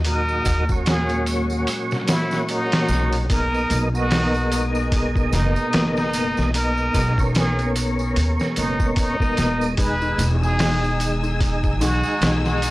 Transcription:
Already playing: D#2 G#3 G#4
0.05 A#2 F#3 D#4 A#4, open hi-hat, tambourine
0.28 tambourine
0.45 D#2, kick, open hi-hat, tambourine
0.68 A#2 F#3 C#4, kick, tambourine
0.86 G#4, snare, open hi-hat, tambourine
1.09 closed hi-hat, tambourine
1.26 open hi-hat, tambourine
1.50 tambourine
1.67 open hi-hat, tambourine
1.91 snare, tambourine
2.08 E4, snare, open hi-hat, tambourine
2.31 snare, tambourine
2.48 D#4, open hi-hat, tambourine
2.72 snare, open hi-hat, tambourine
2.88 B1, snare, tambourine
3.12 open hi-hat, tambourine
3.30 B2 A#3 D#4 A#4, kick, open hi-hat, tambourine
3.54 tambourine
3.70 B1, open hi-hat, tambourine
3.94 B2 A#3 D#4 F#4, tambourine
4.11 snare, open hi-hat, tambourine
4.34 tambourine
4.52 open hi-hat, tambourine
4.75 tambourine
4.92 kick, open hi-hat, tambourine
5.16 kick, tambourine
5.33 F#1 D#4, snare, open hi-hat, tambourine
5.56 tambourine
5.73 F#1, snare, open hi-hat, tambourine
5.97 D#4, snare, tambourine
6.13 open hi-hat, tambourine
6.37 B1, snare, tambourine
6.54 B2 A#3 D#4 A#4, open hi-hat, tambourine
6.78 tambourine
6.94 B1, kick, open hi-hat, tambourine
7.17 B2 A#3 C#4, kick, tambourine
7.35 G#4, snare, open hi-hat, tambourine
7.59 closed hi-hat, tambourine
7.76 open hi-hat, tambourine
7.99 tambourine
8.16 D#2, open hi-hat, tambourine
8.39 snare, tambourine
8.56 F#1 D#4, open hi-hat, tambourine
8.80 kick, tambourine
8.96 D#4, kick, open hi-hat, tambourine
9.20 B2 A#3 D#4, kick, tambourine
9.37 E1, snare, open hi-hat, tambourine
9.61 tambourine
9.77 D#3 G#3 D#4 B4 G#5 E6, kick, open hi-hat, tambourine
10.01 D#4, tambourine
10.18 E1, open hi-hat, tambourine
10.41 D#3 G#3 G#4, tambourine
10.59 D#4, snare, open hi-hat, tambourine
10.84 tambourine
11.00 open hi-hat, tambourine
11.23 D#4, tambourine
11.41 kick, open hi-hat, tambourine
11.63 kick, tambourine
11.80 B1 D#4 F#4, snare, open hi-hat, tambourine
12.03 tambourine
12.21 B1, snare, open hi-hat, tambourine
12.45 D#4 F#4, snare, tambourine
12.62 open hi-hat, tambourine

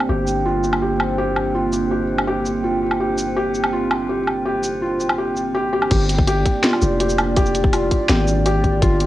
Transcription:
Already playing: A#3 C4 D4 G4
0.00 low woodblock
0.09 G1 G4 G5
0.27 shaker
0.45 F4
0.64 shaker
0.73 low woodblock
0.82 G4
1.00 low woodblock
1.18 G4
1.36 low woodblock
1.55 F4
1.73 shaker
1.91 G4
2.18 low woodblock
2.27 G4
2.46 shaker
2.64 F4
2.91 low woodblock
3.00 G4
3.18 shaker
3.36 G4
3.55 shaker
3.64 low woodblock
3.73 F4
3.91 low woodblock
4.09 G4
4.27 low woodblock
4.45 G4
4.64 shaker
4.82 F4
5.00 shaker
5.09 low woodblock
5.18 G4
5.37 shaker
5.55 G4
5.73 G4
5.82 low woodblock
5.91 G1 A#3 D4 G4 D5, kick, closed hi-hat, crash
6.09 closed hi-hat
6.18 kick
6.27 G4, closed hi-hat
6.46 kick, closed hi-hat
6.64 F4, snare, closed hi-hat
6.73 low woodblock
6.82 F1, shaker
7.00 G4, closed hi-hat
7.09 shaker
7.18 closed hi-hat, low woodblock
7.36 G4, kick, closed hi-hat
7.46 shaker
7.55 closed hi-hat, shaker
7.64 kick
7.73 F4, closed hi-hat, low woodblock
7.91 kick, closed hi-hat
8.09 G#1 G4, snare, closed hi-hat
8.28 shaker
8.46 G4, closed hi-hat
8.64 kick, closed hi-hat
8.82 G1 F4, kick, closed hi-hat
9.00 closed hi-hat

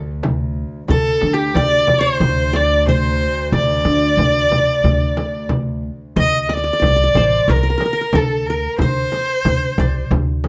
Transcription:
Already playing: D2
0.07 darbuka ka
0.23 darbuka dum, frame drum
0.88 D2 A4, frame drum, darbuka dum
1.05 darbuka ka
1.21 D3, darbuka tek, frame drum
1.33 G4
1.54 D2 D5, darbuka dum, frame drum
1.87 darbuka dum, frame drum
2.00 C5
2.20 D2, darbuka dum, frame drum
2.53 D5, frame drum
2.70 darbuka ka
2.87 C5, darbuka dum, frame drum
3.52 D2 D5, frame drum, darbuka dum
3.69 darbuka ka
3.85 D3, darbuka tek, frame drum
4.17 D2, darbuka dum, frame drum
4.51 darbuka dum, frame drum
4.84 D2, frame drum, darbuka dum
5.01 darbuka ka
5.17 darbuka tek, frame drum
5.34 darbuka ka
5.49 frame drum, darbuka dum
5.83 darbuka ka
6.16 D2 D#5, darbuka dum, frame drum
6.33 darbuka ka
6.43 D#5
6.49 D5, darbuka tek, frame drum
6.57 D5
6.64 D5
6.73 D5
6.80 C2 D5, darbuka dum, frame drum
6.87 D5
6.96 D5
7.04 D5
7.14 A1 C5, darbuka dum, frame drum
7.48 C2 A#4, frame drum, darbuka dum
7.56 A#4
7.63 A#4
7.70 A#4
7.78 A#4, darbuka tek, frame drum
7.86 A#4
7.93 A#4
8.01 A#4
8.13 D2 A4, frame drum, darbuka dum
8.46 A#4
8.79 D2 C5, frame drum, darbuka dum
8.96 darbuka ka
9.12 darbuka tek, frame drum
9.45 D2, darbuka dum, frame drum
9.78 C2 D5, frame drum, darbuka dum
10.11 D2, darbuka dum, frame drum
10.44 darbuka tek, frame drum

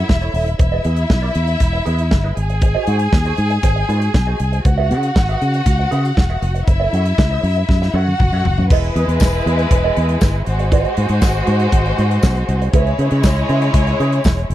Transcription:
Already playing: E4 E5
0.09 E1, muted clean electric guitar stroke, kick, snare
0.21 A4 C#5 E5, closed hi-hat
0.34 D#1 A4 C#5 E5, open hi-hat
0.48 closed hi-hat
0.59 E1 E4 E5, muted clean electric guitar stroke, kick, closed hi-hat
0.72 G#4 B4 D#5
0.84 E2 G#4 B4 E5, closed hi-hat
0.96 muted clean electric guitar stroke, closed hi-hat
1.10 B1, muted clean electric guitar stroke, kick, snare
1.22 G#4 B4 D#5
1.34 E2, muted clean electric guitar stroke, closed hi-hat
1.47 muted clean electric guitar stroke, closed hi-hat
1.60 E1, kick, snare, closed hi-hat
1.73 muted clean electric guitar stroke
1.86 E2 G#4 B4 D#5, closed hi-hat
1.98 muted clean electric guitar stroke, closed hi-hat
2.11 G1, muted clean electric guitar stroke, kick, snare
2.24 G#4 B4 D#5
2.37 G#1 G#4 G#5, muted clean electric guitar stroke, closed hi-hat
2.49 muted clean electric guitar stroke, closed hi-hat
2.61 muted clean electric guitar stroke, kick, closed hi-hat
2.75 F#4 C5 D#5
2.87 G#2 F#4 C5 F#5, closed hi-hat
2.99 muted clean electric guitar stroke, closed hi-hat
3.12 D#2, muted clean electric guitar stroke, kick, snare
3.25 F#4 C5 D#5, closed hi-hat
3.37 G#2, muted clean electric guitar stroke, closed hi-hat
3.50 muted clean electric guitar stroke, closed hi-hat
3.63 G#1, muted clean electric guitar stroke, kick, snare, closed hi-hat
3.76 muted clean electric guitar stroke
3.89 G#2 F#4 C5 D#5, closed hi-hat
4.01 muted clean electric guitar stroke, closed hi-hat
4.14 B1, muted clean electric guitar stroke, kick, snare
4.27 F#4 C5 D#5
4.40 C2, muted clean electric guitar stroke, closed hi-hat
4.52 muted clean electric guitar stroke, closed hi-hat
4.65 C#2 F#4 F#5, muted clean electric guitar stroke, kick, closed hi-hat
4.78 G#4 B4 E5
4.91 C#3 G#4 B4 F#5, closed hi-hat
5.03 muted clean electric guitar stroke, closed hi-hat
5.16 G#1, muted clean electric guitar stroke, kick, snare
5.29 G#4 B4 E5, closed hi-hat
5.42 C#3, muted clean electric guitar stroke, closed hi-hat
5.54 muted clean electric guitar stroke, closed hi-hat
5.66 C#2, kick, snare, closed hi-hat
5.79 muted clean electric guitar stroke
5.91 C#3 G#4 B4 E5, closed hi-hat
6.05 muted clean electric guitar stroke, closed hi-hat
6.17 E1, muted clean electric guitar stroke, kick, snare
6.30 G#4 B4 E5
6.42 F1, muted clean electric guitar stroke, closed hi-hat
6.55 muted clean electric guitar stroke, closed hi-hat
6.67 F#1 E4 E5, muted clean electric guitar stroke, kick, closed hi-hat
6.80 A4 C#5 E5
6.93 F#2 A4 C#5 F#5, closed hi-hat
7.05 muted clean electric guitar stroke, closed hi-hat
7.18 C#2, muted clean electric guitar stroke, kick, snare
7.31 A4 C#5 E5
7.43 F#2, muted clean electric guitar stroke, open hi-hat
7.56 muted clean electric guitar stroke, closed hi-hat
7.69 F#2, kick, snare
7.82 muted clean electric guitar stroke, snare
7.94 F#2 F#4 A4 C#5 E5 F#5
8.08 muted clean electric guitar stroke, high tom
8.20 F#1, muted clean electric guitar stroke, kick, mid tom
8.32 F#2 A4 C#5 E5
8.45 F#1, muted clean electric guitar stroke, floor tom
8.58 F#2, muted clean electric guitar stroke, floor tom
8.70 E1 G#3 E4 G#4 B4 D#5, kick, crash
8.84 closed hi-hat
8.96 E2 G#4 B4 D#5, closed hi-hat
9.08 E2 G#4 B4 D#5, closed hi-hat
9.20 E1, kick, snare, tambourine
9.35 muted clean electric guitar stroke
9.46 E2 G#4 B4 D#5, closed hi-hat
9.59 muted clean electric guitar stroke, closed hi-hat
9.71 E1, muted clean electric guitar stroke, kick, closed hi-hat
9.84 G#4 B4 D#5
9.96 E2 G#4 B4 D#5, closed hi-hat
10.09 muted clean electric guitar stroke, closed hi-hat
10.21 G1, muted clean electric guitar stroke, kick, snare, tambourine
10.34 muted clean electric guitar stroke
10.46 G#1 G#3 F#4 C5, closed hi-hat
10.59 muted clean electric guitar stroke, closed hi-hat
10.72 F#4 C5 D#5, kick, closed hi-hat
10.85 closed hi-hat
10.97 G#2 F#4 C5 D#5, closed hi-hat
11.09 G#2 F#4 C5 D#5, closed hi-hat
11.22 G#1, kick, snare, tambourine
11.34 muted clean electric guitar stroke
11.47 G#2 F#4 C5 D#5, closed hi-hat
11.60 muted clean electric guitar stroke, closed hi-hat
11.72 G#1, kick, closed hi-hat
11.85 muted clean electric guitar stroke, closed hi-hat
11.98 G#2 F#4 C5 D#5, closed hi-hat
12.11 muted clean electric guitar stroke, closed hi-hat
12.22 B1, muted clean electric guitar stroke, kick, snare, tambourine
12.36 muted clean electric guitar stroke, closed hi-hat
12.49 C2, closed hi-hat
12.62 muted clean electric guitar stroke, closed hi-hat
12.73 C#2 G#3 E4 G#4 B4 C#5 E5, kick, closed hi-hat
12.87 closed hi-hat
12.99 C#3 G#4 B4 E5, closed hi-hat
13.11 C#3 G#4 B4 E5, closed hi-hat
13.23 C#2, kick, snare, tambourine
13.37 muted clean electric guitar stroke, closed hi-hat
13.49 C#3 G#4 B4 E5, closed hi-hat
13.62 muted clean electric guitar stroke, closed hi-hat
13.74 C#2, kick, snare, closed hi-hat
13.87 muted clean electric guitar stroke, closed hi-hat
14.00 C#3 G#4 B4 E5, closed hi-hat
14.12 muted clean electric guitar stroke, closed hi-hat
14.24 E1, muted clean electric guitar stroke, kick, snare, tambourine
14.38 muted clean electric guitar stroke, closed hi-hat
14.50 F1, closed hi-hat

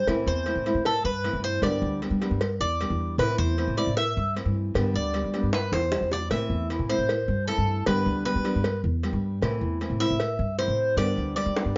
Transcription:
0.07 A2 E3 A3 C4 E4, cowbell
0.26 E2 C5
0.46 E3 A3 C4 E4, cowbell
0.55 A2
0.66 A3 C4 E4, cowbell
0.74 A2
0.85 A4, muted nylon-string guitar stroke, cowbell
1.04 G2 B4
1.23 E3 A3 C4 E4, cowbell
1.33 G2
1.44 C5
1.62 G2 D3 G3 B3 D4 G4 D5, cowbell
1.82 D2
2.02 G3 B3 D4 G4, cowbell
2.11 G3
2.21 G3 B3 D4 G4, cowbell
2.31 G2
2.41 muted nylon-string guitar stroke, cowbell
2.60 E2 D5
2.81 G3 B3 D4 G4, cowbell
2.90 E2
3.18 A2 E3 A3 C4 E4 B4, cowbell
3.38 E2 C5
3.58 E3 A3 C4 E4, cowbell
3.68 A2
3.77 A3 C4 E4 D5, cowbell
3.87 A2
3.95 E5, muted nylon-string guitar stroke, cowbell
4.17 G2
4.35 E3 A3 C4 E4, cowbell
4.45 G2
4.74 G2 D3 G3 B3 D4 G4, cowbell
4.94 D2 D5
5.14 G3 B3 D4 G4, cowbell
5.24 G3
5.34 G3 B3 D4 G4, cowbell
5.43 G2
5.53 B4, muted nylon-string guitar stroke, cowbell, high bongo
5.72 E2 C5, high bongo
5.92 G3 B3 D4 G4, cowbell, low bongo
6.01 E2
6.12 D5, low bongo
6.31 A2 E3 A3 C4 E4 E5, cowbell
6.50 E2
6.70 E3 A3 C4 E4, cowbell
6.79 A2
6.89 A3 C4 E4 C5, cowbell
6.98 A2
7.09 muted nylon-string guitar stroke, cowbell
7.28 G2
7.47 E3 A3 C4 E4 A4, cowbell
7.58 G2
7.86 G2 D3 G3 B3 D4 G4 B4, cowbell
8.06 D2
8.25 G3 B3 D4 G4 B4, cowbell
8.35 G3
8.44 G3 B3 D4 G4, cowbell
8.55 G2
8.64 muted nylon-string guitar stroke, cowbell
8.84 E2
9.03 G3 B3 D4 G4, cowbell
9.13 G2
9.42 A2 E3 A3 C4 E4, cowbell
9.61 E2
9.80 E3 A3 C4 E4, cowbell
9.90 A2
10.00 A3 C4 E4 E5, cowbell
10.10 A2
10.20 muted nylon-string guitar stroke, cowbell
10.39 G2
10.58 E3 A3 C4 E4 C5, cowbell
10.68 A2
10.97 G2 D3 G3 B3 D4 G4 D5, cowbell
11.17 D2
11.36 G3 B3 D4 G4 D5, cowbell
11.46 G3
11.56 G3 B3 D4 G4, cowbell, high bongo
11.65 G2

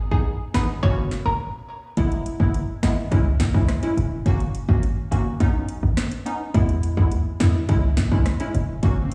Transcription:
Already playing: G#1
0.11 A#1 B3 D#4 G#4, kick
0.54 G#1 B3 D#4 G#4 B4, snare
0.83 F#1 A#3 C#4 F#4 C#5, kick
1.11 snare
1.26 E1 A#4
1.97 E1 G#3 B3 E4, kick, closed hi-hat
2.12 closed hi-hat
2.26 closed hi-hat
2.40 F#1 G#3 B3 E4, kick
2.54 closed hi-hat
2.83 G#1 G#3 B3 E4, snare, closed hi-hat
3.11 C#2 G#3 C#4 E4, kick, closed hi-hat
3.40 kick, snare, closed hi-hat
3.54 C#2 G#3 C#4 E4, kick
3.69 cross-stick, snare, closed hi-hat
3.83 G#3 C#4 E4, closed hi-hat
3.97 E1, closed hi-hat
4.26 F#1 A#3 C#4 F#4, kick, closed hi-hat
4.40 closed hi-hat
4.55 closed hi-hat
4.69 G#1 A#3 C#4 F#4, kick
4.83 closed hi-hat
5.11 F#1 A#3 C#4 F#4, closed hi-hat
5.40 B1 B3 C#4 D#4, kick, closed hi-hat
5.69 closed hi-hat
5.83 G#1
5.97 cross-stick, snare, closed hi-hat
6.11 closed hi-hat
6.26 B3 C#4 D#4, closed hi-hat
6.54 E2 G#3 B3 E4, kick, closed hi-hat
6.69 closed hi-hat
6.83 closed hi-hat
6.97 D#2 G#3 B3 E4, kick
7.11 closed hi-hat
7.40 E2 G#3 B3 E4, snare, closed hi-hat
7.69 C#2 G#3 C#4 E4, kick, closed hi-hat
7.97 kick, snare, closed hi-hat
8.11 C#2 G#3 C#4 E4, kick
8.26 cross-stick, snare, closed hi-hat
8.40 G#3 C#4 E4, closed hi-hat
8.55 E1, closed hi-hat
8.83 F#1 A#3 C#4 F#4, kick, closed hi-hat, swell

